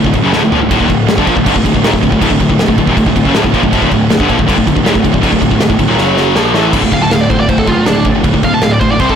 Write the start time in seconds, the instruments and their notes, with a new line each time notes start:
0.05 picked electric bass D1, distorted electric guitar D2 A2, kick
0.13 picked electric bass D1, distorted electric guitar D2 A2, kick, crash
0.23 picked electric bass F#1, distorted electric guitar F#2 C#3
0.33 picked electric bass D1, distorted electric guitar D2 A2, snare
0.43 picked electric bass D1, distorted electric guitar D2 A2
0.52 picked electric bass A#1, distorted electric guitar A#2 F3, floor tom
0.61 picked electric bass D1, distorted electric guitar D2 A2
0.71 picked electric bass D1, distorted electric guitar D2 A2, kick, crash
0.80 picked electric bass D#1, distorted electric guitar D#2 A#2, kick
0.89 picked electric bass D1, distorted electric guitar D2 A2, kick, crash
1.08 picked electric bass D1, distorted electric guitar D2 A2, snare, crash
1.18 picked electric bass G1, distorted electric guitar G2 D3, kick
1.27 picked electric bass A#1, distorted electric guitar A#2 F3, kick, crash
1.37 picked electric bass D1, distorted electric guitar D2 A2, kick
1.46 picked electric bass G1, distorted electric guitar G2 D3, kick, crash
1.56 picked electric bass D1, distorted electric guitar D2 A2, kick
1.65 picked electric bass D1, distorted electric guitar D2 A2, kick, crash
1.74 picked electric bass D1, distorted electric guitar D2 A2, kick
1.84 picked electric bass D#1, distorted electric guitar D#2 A#2, snare, crash
1.94 picked electric bass D1, distorted electric guitar D2 A2, kick
2.03 picked electric bass D1, distorted electric guitar D2 A2, kick, crash
2.12 picked electric bass D1, distorted electric guitar D2 A2, kick
2.21 picked electric bass D1, distorted electric guitar D2 A2, kick, crash
2.31 picked electric bass D1, distorted electric guitar D2 A2, kick
2.40 picked electric bass D1, distorted electric guitar D2 A2, kick, crash
2.50 picked electric bass D1, distorted electric guitar D2 A2, kick
2.59 picked electric bass D1, distorted electric guitar D2 A2, snare, crash
2.68 picked electric bass D1, distorted electric guitar D2 A2, kick
2.78 picked electric bass D1, distorted electric guitar D2 A2, kick, crash
2.87 picked electric bass D#1, distorted electric guitar D#2 A#2, kick
2.97 picked electric bass D1, distorted electric guitar D2 A2, kick, crash
3.06 picked electric bass D1, distorted electric guitar D2 A2, kick
3.16 picked electric bass D1, distorted electric guitar D2 A2, kick, crash
3.25 picked electric bass F#1, distorted electric guitar F#2 C#3, kick
3.34 picked electric bass D1, distorted electric guitar D2 A2, snare, crash
3.44 picked electric bass D1, distorted electric guitar D2 A2, kick
3.54 picked electric bass A#1, distorted electric guitar A#2 F3, kick, crash
3.63 picked electric bass D1, distorted electric guitar D2 A2, kick
3.73 picked electric bass D1, distorted electric guitar D2 A2, kick, crash
3.82 picked electric bass D#1, distorted electric guitar D#2 A#2, kick
3.92 picked electric bass D1, distorted electric guitar D2 A2, kick, crash
4.10 picked electric bass D1, distorted electric guitar D2 A2, snare, crash
4.20 picked electric bass G1, distorted electric guitar G2 D3, kick
4.29 picked electric bass A#1, distorted electric guitar A#2 F3, kick, crash
4.39 picked electric bass D1, distorted electric guitar D2 A2, kick
4.47 picked electric bass G1, distorted electric guitar G2 D3, kick, crash
4.58 picked electric bass D1, distorted electric guitar D2 A2, kick
4.67 picked electric bass D1, distorted electric guitar D2 A2, kick, crash
4.76 picked electric bass D1, distorted electric guitar D2 A2, kick
4.85 picked electric bass D#1, distorted electric guitar D#2 A#2, snare, crash
4.95 picked electric bass D1, distorted electric guitar D2 A2, kick
5.04 picked electric bass D1, distorted electric guitar D2 A2, kick, crash
5.13 picked electric bass D1, distorted electric guitar D2 A2, kick
5.22 picked electric bass D1, distorted electric guitar D2 A2, kick, crash
5.31 picked electric bass D1, distorted electric guitar D2 A2, kick
5.41 picked electric bass D1, distorted electric guitar D2 A2, kick, crash
5.51 picked electric bass D1, distorted electric guitar D2 A2, kick
5.60 picked electric bass D1, distorted electric guitar D2 A2, snare, crash
5.69 picked electric bass D1, distorted electric guitar D2 A2, kick
5.79 picked electric bass D1, distorted electric guitar D2 A2, kick, crash
5.88 picked electric bass D#1, distorted electric guitar D#2 A#2
5.98 picked electric bass F#1, distorted electric guitar F#2 C#3 F#3, snare
6.17 snare
6.35 picked electric bass A#1, distorted electric guitar A#2 F3 A#3, snare
6.53 picked electric bass A1, distorted electric guitar A2 E3 A3, snare
6.72 picked electric bass D1, distorted electric guitar D2 A2 D3, kick, crash
6.82 distorted electric guitar D2 A2, kick
6.92 picked electric bass D1, distorted electric guitar D2 A2, lead electric guitar F5, kick, crash
7.02 distorted electric guitar D2 A2, lead electric guitar A5
7.10 picked electric bass D1, distorted electric guitar D2 A2, lead electric guitar F5, snare, crash
7.21 lead electric guitar D5
7.29 picked electric bass D1, distorted electric guitar D2 A2, lead electric guitar C5, kick, crash
7.39 distorted electric guitar D2 A2, lead electric guitar D5
7.48 picked electric bass D1, distorted electric guitar D2 A2, lead electric guitar C5, kick, crash
7.58 lead electric guitar A4, kick
7.67 picked electric bass D1, distorted electric guitar D2 A2, lead electric guitar F4, kick, crash
7.76 distorted electric guitar D2 A2
7.86 picked electric bass D1, distorted electric guitar D2 A2, lead electric guitar D4, snare, crash
7.96 distorted electric guitar D2 A2
8.05 picked electric bass D1, distorted electric guitar D2 A2, kick, crash
8.15 distorted electric guitar D2 A2
8.23 picked electric bass D1, distorted electric guitar D2 A2, kick, crash
8.33 distorted electric guitar D2 A2, kick
8.43 distorted electric guitar D2 A2, lead electric guitar F5, kick, crash
8.53 distorted electric guitar D2 A2, lead electric guitar A5
8.62 picked electric bass D1, distorted electric guitar D2 A2, lead electric guitar F5, snare, crash
8.72 lead electric guitar D5
8.80 picked electric bass D1, distorted electric guitar D2 A2, lead electric guitar C5, kick, crash
8.91 distorted electric guitar D2 A2, lead electric guitar D5
8.99 picked electric bass C2, distorted electric guitar C3 G3 C4, lead electric guitar C5, kick, crash
9.09 lead electric guitar A4, kick